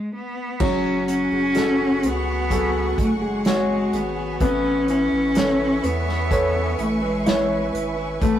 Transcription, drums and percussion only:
0.60 kick, crash
1.08 closed hi-hat
1.55 snare, closed hi-hat
2.03 closed hi-hat
2.50 kick, closed hi-hat
2.98 kick, closed hi-hat
3.45 snare, closed hi-hat
3.93 closed hi-hat
4.40 kick, closed hi-hat
4.88 closed hi-hat
5.35 snare, closed hi-hat
5.84 closed hi-hat
6.09 snare
6.31 kick, closed hi-hat
6.79 closed hi-hat
7.26 snare, closed hi-hat
7.75 closed hi-hat
8.22 kick, closed hi-hat

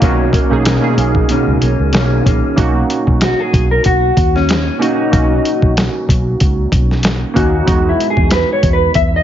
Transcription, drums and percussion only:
0.02 kick, closed hi-hat
0.33 kick, closed hi-hat
0.65 snare, closed hi-hat
0.98 closed hi-hat
1.15 kick
1.29 closed hi-hat
1.62 closed hi-hat
1.93 snare, closed hi-hat
2.26 kick, closed hi-hat
2.57 kick, closed hi-hat
2.90 closed hi-hat
3.07 kick
3.21 snare, closed hi-hat
3.53 kick, closed hi-hat
3.84 kick, closed hi-hat
4.17 kick, closed hi-hat
4.36 snare
4.49 snare, closed hi-hat
4.82 closed hi-hat
5.13 kick, closed hi-hat
5.45 closed hi-hat
5.62 kick
5.77 snare, closed hi-hat
6.09 kick, closed hi-hat
6.40 kick, closed hi-hat
6.72 kick, closed hi-hat
6.91 snare
7.03 snare, closed hi-hat
7.36 kick, closed hi-hat
7.68 kick, closed hi-hat
8.00 closed hi-hat
8.17 kick
8.31 snare, closed hi-hat
8.63 kick, closed hi-hat
8.94 kick, closed hi-hat

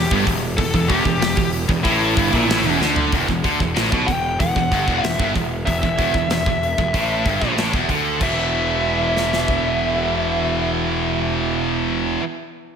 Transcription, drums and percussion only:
0.11 kick
0.27 kick, open hi-hat
0.58 kick, open hi-hat
0.74 kick
0.90 kick, open hi-hat
1.05 kick
1.22 snare, open hi-hat
1.37 kick
1.53 open hi-hat
1.69 kick
1.85 kick, open hi-hat
2.17 kick, open hi-hat
2.33 kick
2.50 snare, open hi-hat
2.82 snare
2.96 floor tom
3.12 kick, open hi-hat
3.28 kick
3.44 kick, open hi-hat
3.60 kick
3.76 snare, open hi-hat
3.92 kick
4.08 kick, open hi-hat
4.40 kick, open hi-hat
4.56 kick
4.72 kick, open hi-hat
4.88 kick
5.04 snare, open hi-hat
5.20 kick
5.36 kick, open hi-hat
5.67 kick, open hi-hat
5.83 kick
5.99 kick, open hi-hat
6.14 kick
6.30 snare, open hi-hat
6.46 kick
6.63 open hi-hat
6.78 kick
6.94 kick, open hi-hat
7.26 kick, open hi-hat
7.42 kick
7.58 snare, open hi-hat
7.73 kick
7.89 kick, open hi-hat
8.21 kick, crash
9.17 snare
9.33 snare
9.48 kick

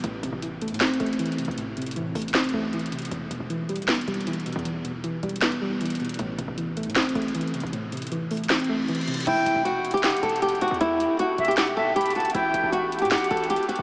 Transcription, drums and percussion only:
0.04 closed hi-hat
0.23 closed hi-hat
0.42 closed hi-hat
0.61 closed hi-hat
0.68 closed hi-hat
0.74 closed hi-hat
0.81 snare, clap, closed hi-hat
0.87 closed hi-hat
0.94 closed hi-hat
1.00 closed hi-hat
1.06 closed hi-hat
1.13 closed hi-hat
1.19 closed hi-hat
1.26 closed hi-hat
1.32 closed hi-hat
1.38 closed hi-hat
1.45 closed hi-hat
1.51 closed hi-hat
1.58 closed hi-hat
1.77 closed hi-hat
1.82 closed hi-hat
1.86 closed hi-hat
1.91 closed hi-hat
1.96 closed hi-hat
2.15 closed hi-hat, open hi-hat
2.22 closed hi-hat
2.28 closed hi-hat
2.34 snare, clap, closed hi-hat
2.39 closed hi-hat
2.44 closed hi-hat
2.49 closed hi-hat
2.73 closed hi-hat
2.79 closed hi-hat
2.86 closed hi-hat
2.92 closed hi-hat
2.99 closed hi-hat
3.02 closed hi-hat
3.05 closed hi-hat
3.11 closed hi-hat
3.31 closed hi-hat
3.50 closed hi-hat
3.69 closed hi-hat
3.76 closed hi-hat
3.82 closed hi-hat
3.88 snare, clap, closed hi-hat
3.95 closed hi-hat
4.01 closed hi-hat
4.08 closed hi-hat
4.14 closed hi-hat
4.21 closed hi-hat
4.27 closed hi-hat
4.33 closed hi-hat
4.40 closed hi-hat
4.46 closed hi-hat
4.52 closed hi-hat
4.59 closed hi-hat
4.65 closed hi-hat
4.85 closed hi-hat
5.04 closed hi-hat
5.23 closed hi-hat
5.29 closed hi-hat
5.36 closed hi-hat
5.42 snare, clap, closed hi-hat
5.52 closed hi-hat
5.81 closed hi-hat
5.85 closed hi-hat
5.90 closed hi-hat
5.95 closed hi-hat
6.00 closed hi-hat
6.05 closed hi-hat
6.09 closed hi-hat
6.14 closed hi-hat
6.19 closed hi-hat
6.39 closed hi-hat
6.58 closed hi-hat
6.77 closed hi-hat
6.83 closed hi-hat
6.90 closed hi-hat
6.96 snare, clap, closed hi-hat
7.02 closed hi-hat
7.09 closed hi-hat
7.15 closed hi-hat
7.22 closed hi-hat
7.28 closed hi-hat
7.35 closed hi-hat
7.41 closed hi-hat
7.47 closed hi-hat
7.54 closed hi-hat
7.60 closed hi-hat
7.67 closed hi-hat
7.73 closed hi-hat
7.92 closed hi-hat
7.97 closed hi-hat
8.02 closed hi-hat
8.07 closed hi-hat
8.12 closed hi-hat
8.31 closed hi-hat, open hi-hat
8.37 closed hi-hat
8.44 closed hi-hat
8.50 snare, clap, closed hi-hat
8.55 closed hi-hat
8.60 closed hi-hat
8.64 closed hi-hat
8.88 closed hi-hat
8.95 closed hi-hat
9.01 closed hi-hat
9.08 closed hi-hat
9.14 closed hi-hat
9.17 closed hi-hat
9.20 closed hi-hat
9.27 closed hi-hat, crash
9.46 closed hi-hat
9.65 closed hi-hat
9.85 closed hi-hat
9.91 closed hi-hat
9.97 closed hi-hat
10.04 snare, clap, closed hi-hat
10.10 closed hi-hat
10.17 closed hi-hat
10.23 closed hi-hat
10.29 closed hi-hat
10.36 closed hi-hat
10.42 closed hi-hat
10.49 closed hi-hat
10.55 closed hi-hat
10.61 closed hi-hat
10.68 closed hi-hat
10.74 closed hi-hat
10.81 closed hi-hat
11.00 closed hi-hat
11.19 closed hi-hat
11.38 closed hi-hat
11.45 closed hi-hat
11.51 closed hi-hat
11.57 snare, clap, closed hi-hat
11.67 closed hi-hat
11.96 closed hi-hat
12.01 closed hi-hat
12.06 closed hi-hat
12.10 closed hi-hat
12.15 closed hi-hat
12.20 closed hi-hat
12.25 closed hi-hat
12.30 closed hi-hat
12.35 closed hi-hat
12.54 closed hi-hat
12.73 closed hi-hat
12.92 closed hi-hat
12.99 closed hi-hat
13.05 closed hi-hat
13.11 snare, clap, closed hi-hat
13.18 closed hi-hat
13.24 closed hi-hat
13.31 closed hi-hat
13.37 closed hi-hat
13.44 closed hi-hat
13.50 closed hi-hat
13.56 closed hi-hat
13.63 closed hi-hat
13.69 closed hi-hat
13.76 closed hi-hat

